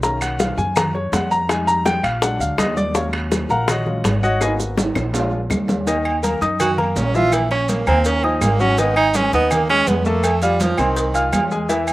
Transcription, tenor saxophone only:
6.61 6.81 F#4 medium
6.80 6.99 A#3 medium
6.98 7.16 C#4 medium
7.15 7.35 F4 loud
7.33 7.50 E4 medium
7.51 7.71 C#4 medium
7.70 7.87 A#3 medium
7.88 8.08 C4 loud
8.07 8.25 C#4 loud
8.24 8.43 F3 medium
8.42 8.62 A#3 medium
8.61 8.81 C#4 loud
8.79 8.96 B3 medium
8.96 9.17 D#4 loud
9.15 9.33 C#4 medium
9.34 9.53 B3 loud
9.52 9.69 A#3 medium
9.70 9.89 C#4 loud
9.88 10.07 B3 medium
10.05 10.26 A#3 medium
10.25 10.42 A3 medium
10.43 10.63 G3 medium
10.61 10.81 F3 medium
10.79 11.33 D#3 medium

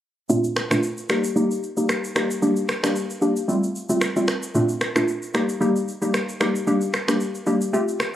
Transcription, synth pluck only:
0.30 0.67 A#2 medium
0.30 0.67 A3 medium
0.30 0.67 C4 medium
0.30 0.68 D4 medium
0.30 0.68 F4 medium
0.71 0.90 A#2 medium
0.71 0.90 A3 medium
0.71 0.90 C4 medium
0.71 0.90 D4 medium
0.71 0.90 F4 medium
1.09 1.30 G3 medium
1.09 1.30 A#3 medium
1.09 1.30 D#4 medium
1.09 1.30 G4 medium
1.36 1.56 G3 medium
1.36 1.56 A#3 medium
1.36 1.57 D#4 medium
1.36 1.57 G4 loud
1.77 2.13 G3 medium
1.77 2.13 A#3 medium
1.77 2.13 D#4 medium
1.77 2.13 G4 medium
2.15 2.40 G3 medium
2.15 2.40 A#3 medium
2.15 2.40 D#4 medium
2.15 2.40 G4 medium
2.42 2.80 G3 medium
2.42 2.80 A#3 medium
2.42 2.80 D4 medium
2.42 2.80 G4 loud
2.83 3.03 G3 medium
2.83 3.03 A#3 medium
2.83 3.03 D4 medium
2.83 3.03 G4 medium
3.21 3.42 G3 medium
3.21 3.42 A#3 medium
3.21 3.42 D4 medium
3.21 3.43 G4 medium
3.48 3.69 G3 loud
3.48 3.69 A3 medium
3.48 3.69 C4 medium
3.48 3.69 F4 loud
3.89 4.09 G3 medium
3.89 4.09 A3 medium
3.89 4.09 C4 medium
3.89 4.09 F4 medium
4.16 4.35 G3 medium
4.16 4.35 A3 medium
4.16 4.36 C4 medium
4.16 4.36 F4 medium
4.55 4.92 A#2 medium
4.55 4.92 A3 medium
4.55 4.92 C4 medium
4.55 4.92 D4 medium
4.55 4.93 F4 loud
4.96 5.15 A#2 medium
4.96 5.15 A3 medium
4.96 5.15 C4 medium
4.96 5.15 D4 medium
4.96 5.15 F4 medium
5.34 5.55 G3 medium
5.34 5.55 A#3 medium
5.34 5.55 D#4 medium
5.34 5.55 G4 medium
5.61 5.81 G3 medium
5.61 5.81 A#3 medium
5.61 5.81 D#4 medium
5.61 5.82 G4 loud
6.02 6.37 G3 medium
6.02 6.37 A#3 medium
6.02 6.38 D#4 medium
6.02 6.38 G4 medium
6.40 6.65 G3 medium
6.40 6.65 A#3 medium
6.40 6.65 D#4 medium
6.40 6.65 G4 medium
6.67 7.05 G3 medium
6.67 7.05 A#3 medium
6.67 7.05 D4 medium
6.67 7.05 G4 loud
7.08 7.27 G3 medium
7.08 7.27 A#3 medium
7.08 7.27 D4 medium
7.08 7.28 G4 medium
7.47 7.67 G3 medium
7.47 7.67 A#3 medium
7.47 7.67 D4 medium
7.47 7.67 G4 medium
7.73 7.94 A3 medium
7.73 7.94 C4 medium
7.73 7.94 F4 medium
7.73 7.94 G4 loud

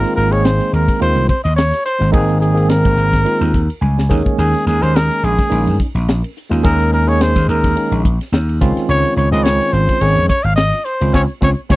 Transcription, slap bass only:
0.17 0.31 G#1 medium
0.33 0.59 G#1 medium
0.73 0.87 D#2 medium
1.02 1.16 D#2 medium
1.16 1.28 C2 medium
1.45 1.71 D#2 medium
2.01 2.13 G#1 medium
2.14 2.81 G#1 medium
2.85 2.96 G#1 medium
2.97 3.24 G#1 medium
3.41 3.68 D#2 medium
3.81 4.08 C#2 medium
4.11 4.25 D#2 medium
4.26 muted slap bass stroke soft
4.38 4.53 D#2 medium
4.66 4.81 D#2 medium
4.82 5.08 D#2 medium
5.23 5.38 A#1 medium
5.51 5.68 A#1 medium
5.67 5.79 G2 medium
5.95 6.21 A#1 medium
6.51 6.63 D#2 medium
6.65 7.32 D#2 medium
7.36 7.48 D#2 medium
7.49 7.75 D#2 medium
7.92 8.18 A#1 medium
8.32 8.59 D#2 medium
8.62 8.76 C#2 medium
8.77 muted slap bass stroke soft
8.89 9.03 C#2 medium
9.17 9.31 C#2 medium
9.32 9.58 C#2 medium
9.73 9.87 G#1 medium
10.01 10.18 G#1 medium
10.16 10.28 F2 medium
10.44 10.71 G#1 medium
11.01 11.13 C#2 medium
11.14 11.25 C#2 medium
11.42 11.53 C#2 medium
11.70 11.76 C#2 loud

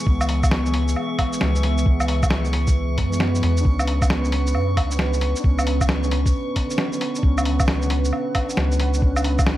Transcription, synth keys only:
0.00 0.02 E3 loud
0.00 1.27 E3 medium
0.00 0.06 G#3 medium
0.00 0.10 B3 loud
0.06 1.29 G#3 medium
0.06 1.31 B3 loud
1.29 1.80 E3 medium
1.33 1.84 G#3 medium
1.33 1.86 B3 medium
1.82 3.07 E3 medium
1.86 3.09 G#3 medium
1.90 3.11 B3 loud
3.10 3.39 E3 loud
3.10 3.40 G#3 medium
3.10 3.41 B3 loud
3.40 3.62 E3 loud
3.40 3.63 G#3 medium
3.44 3.64 B3 loud
3.61 4.86 D4 medium
3.65 4.88 B3 medium
3.65 4.90 C#4 loud
4.87 5.42 B3 medium
4.87 5.39 D4 medium
4.95 5.44 C#4 medium
5.40 6.67 B3 medium
5.40 6.65 D4 medium
5.48 6.69 C#4 loud
6.66 7.19 D3 medium
6.66 7.21 B3 medium
6.74 7.23 C#4 medium
7.18 8.46 B3 medium
7.18 8.44 D4 medium
7.26 8.48 C#4 loud
8.45 8.97 D4 medium
8.49 9.00 B3 medium
8.49 9.02 C#4 medium
8.98 9.57 B3 medium
8.98 9.57 D4 loud
9.06 9.57 C#4 loud

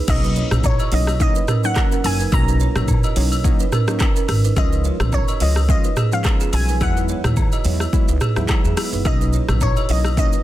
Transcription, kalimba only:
0.24 0.32 D#4 medium
0.24 0.32 B4 medium
0.37 0.47 E4 medium
0.37 0.46 C#5 medium
0.80 0.89 F#4 medium
0.80 0.88 D#5 medium
0.93 1.03 E4 medium
0.93 1.02 C#5 medium
1.36 1.44 D#4 medium
1.36 1.44 B4 medium
1.49 1.59 C#4 medium
1.49 1.58 A#4 medium
1.92 2.01 C#4 medium
1.92 2.00 A#4 medium
2.20 2.29 D#4 medium
2.20 2.28 B4 medium
2.48 2.57 D#4 medium
2.48 2.56 B4 medium
2.61 2.71 E4 medium
2.61 2.71 C#5 medium
3.04 3.13 F#4 medium
3.04 3.12 D#5 medium
3.17 3.27 E4 medium
3.17 3.27 C#5 medium
3.60 3.69 D#4 medium
3.60 3.68 B4 medium
3.73 3.83 C#4 medium
3.73 3.83 A#4 medium
4.17 4.25 C#4 medium
4.17 4.24 A#4 medium
4.45 4.53 D#4 medium
4.45 4.52 B4 medium
4.73 4.81 D#4 medium
4.73 4.80 B4 medium
4.85 4.95 F4 medium
4.85 4.95 C#5 medium
5.29 5.37 F#4 medium
5.29 5.36 D#5 medium
5.41 5.51 F4 medium
5.41 5.51 C#5 medium
5.85 5.93 D#4 medium
5.85 5.93 B4 medium
5.97 6.07 B3 medium
5.97 6.07 G#4 medium
6.41 6.49 B3 medium
6.41 6.49 G#4 medium
6.69 6.77 D#4 medium
6.69 6.77 B4 medium
6.97 7.05 D#4 medium
6.97 7.05 B4 medium
7.10 7.20 E4 medium
7.10 7.19 C#5 medium
7.53 7.61 F#4 medium
7.53 7.61 D#5 medium
7.66 7.76 E4 medium
7.66 7.75 C#5 medium
8.09 8.17 D#4 medium
8.09 8.17 B4 medium
8.22 8.32 B3 medium
8.22 8.31 G#4 medium
8.65 8.74 B3 medium
8.65 8.73 G#4 medium
8.93 9.02 D#4 medium
8.93 9.01 B4 medium
9.21 9.30 D#4 medium
9.21 9.29 B4 medium
9.34 9.44 E4 medium
9.34 9.43 C#5 medium
9.77 9.86 F#4 medium
9.77 9.85 D#5 medium
9.90 10.00 E4 medium
9.90 10.00 C#5 medium
10.34 10.42 D#4 medium
10.34 10.41 B4 medium

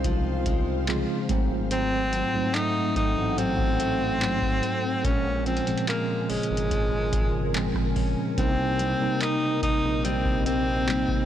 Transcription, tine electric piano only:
0.00 0.88 C#3 medium
0.00 0.88 G#3 medium
0.00 0.89 C4 medium
0.00 0.18 C#4 medium
0.00 1.31 D#4 medium
0.00 0.89 F4 medium
0.88 1.29 C#3 loud
0.88 1.30 G#3 medium
0.88 1.29 C4 medium
0.88 1.30 F4 loud
1.29 2.13 G#2 medium
1.29 2.13 F#3 medium
1.29 2.13 A3 medium
1.29 2.13 C4 loud
2.33 3.51 G#2 medium
2.33 3.51 F#3 medium
2.33 3.52 A3 medium
2.33 3.52 D#4 medium
4.21 4.80 G#2 medium
4.21 4.80 F#3 medium
4.21 4.80 A3 medium
4.21 4.81 C4 medium
5.05 5.49 A#2 medium
5.05 5.49 F3 medium
5.05 5.49 G#3 medium
5.05 5.49 C#4 medium
5.67 6.85 A#2 medium
5.67 6.85 F3 medium
5.67 6.85 G#3 medium
5.67 6.85 C4 medium
7.55 8.13 A#2 medium
7.55 8.14 F3 medium
7.55 8.14 G#3 medium
7.55 8.14 C4 loud
8.38 8.82 C3 medium
8.38 8.82 G3 medium
8.38 8.82 A#3 medium
8.38 8.83 D#4 medium
9.00 10.18 C3 medium
9.00 10.18 G3 medium
9.00 10.18 A#3 medium
9.00 10.19 D#4 medium
10.88 11.25 C3 medium
10.88 11.25 G3 medium
10.88 11.25 A#3 medium
10.88 11.25 D#4 medium

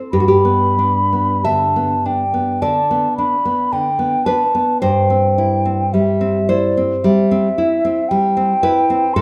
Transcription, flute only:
0.12 1.46 B5 soft
1.44 2.08 A5 soft
2.06 2.63 G5 soft
2.62 3.17 A5 soft
3.17 3.74 B5 soft
3.72 4.27 G5 soft
4.25 4.81 A5 soft
4.82 5.95 G5 medium
5.93 6.50 E5 soft
6.49 6.79 D5 soft
7.04 8.10 E5 medium
8.09 9.15 G5 medium
9.14 9.22 C6 medium

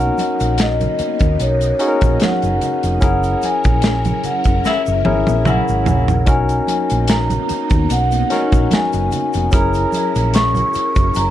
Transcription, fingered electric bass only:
0.41 0.86 A#1 medium
1.00 muted fingered electric bass stroke medium
1.21 1.36 D#2 medium
1.40 1.71 B1 medium
2.02 2.17 A#1 medium
2.43 2.58 F#1 medium
2.84 2.98 F1 medium
3.02 3.34 F#1 loud
3.66 4.11 A#1 medium
4.25 muted fingered electric bass stroke soft
4.46 4.61 F#1 medium
4.88 5.02 F#1 medium
5.06 5.23 G#1 loud
5.28 5.59 A#1 medium
5.69 5.83 G#1 medium
5.88 6.28 A#1 medium
6.28 6.59 B1 medium
6.92 7.36 A#1 medium
7.51 muted fingered electric bass stroke soft
7.71 7.86 D#2 medium
7.91 8.22 B1 medium
8.53 8.67 A#1 medium
8.94 9.08 F#1 medium
9.35 9.49 F1 medium
9.53 9.84 F#1 loud
10.16 10.61 A#1 medium
10.76 muted fingered electric bass stroke soft
10.96 11.11 F#1 medium
11.17 11.30 F#1 loud

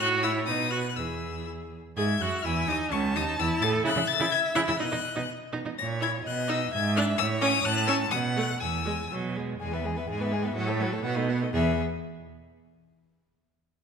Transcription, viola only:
0.00 0.25 F#4 loud
0.23 0.47 E4 loud
0.47 0.71 D#4 medium
0.71 0.79 F#4 medium
0.97 1.47 E4 medium
1.97 2.05 G#4 medium
2.21 2.44 F#4 medium
2.45 2.69 E4 medium
2.68 2.94 D#4 loud
2.92 3.17 C#4 medium
3.15 3.38 D#4 loud
3.40 3.64 E4 loud
3.63 3.83 A4 loud
3.84 3.89 E4 loud
3.97 4.01 E4 medium
4.20 4.25 E4 loud
4.55 4.60 E4 loud
4.68 4.73 E4 medium
4.79 4.84 D#4 loud
4.92 4.96 D#4 medium
5.16 5.21 D#4 medium
5.53 5.58 D#4 loud
5.65 5.70 D#4 medium
6.01 6.12 E4 medium
6.48 6.59 D#4 medium
6.96 7.07 D4 medium
7.41 7.52 C#4 loud
7.87 7.98 C#4 medium
8.36 8.48 A3 medium
8.85 8.97 G#3 medium
9.11 9.38 F#3 medium
9.36 9.60 G#3 medium
9.61 9.73 G#3 medium
9.72 9.86 B3 medium
9.84 9.98 G#3 medium
9.97 10.08 B3 medium
10.09 10.22 G#3 medium
10.20 10.34 B3 medium
10.32 10.46 G#3 medium
10.45 10.56 B3 medium
10.57 10.69 F#3 medium
10.68 10.81 A3 medium
10.80 10.94 F#3 medium
10.93 11.04 A3 medium
11.04 11.18 B3 medium
11.16 11.31 A3 medium
11.29 11.44 B3 medium
11.42 11.52 A3 medium
11.53 11.80 B3 medium

